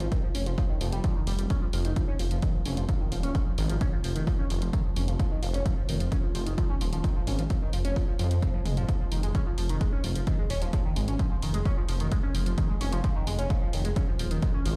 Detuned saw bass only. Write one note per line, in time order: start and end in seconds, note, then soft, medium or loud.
0.35 0.54 F1 medium
0.81 1.00 F1 loud
1.27 1.46 F1 loud
1.73 1.92 F1 loud
2.19 2.38 F1 medium
2.66 2.85 F1 medium
3.12 3.31 D#1 medium
3.58 3.77 G#1 loud
4.04 4.23 F1 medium
4.50 4.69 F1 loud
4.96 5.15 F1 loud
5.43 5.62 F1 loud
5.89 6.08 F1 medium
6.35 6.54 F1 medium
6.81 7.00 D#1 medium
7.27 7.46 G#1 loud
7.73 7.92 F1 medium
8.19 8.38 F2 medium
8.66 8.85 F1 medium
9.12 9.31 F1 loud
9.58 9.77 F1 medium
10.04 10.23 F1 medium
10.50 10.69 D#1 medium
10.96 11.15 G#1 loud
11.42 11.62 F1 medium
11.89 12.08 F1 loud
12.35 12.54 F1 loud
12.81 13.00 F1 loud
13.27 13.46 F1 medium
13.73 13.92 F1 medium
14.19 14.38 D#1 medium
14.65 14.76 G#1 loud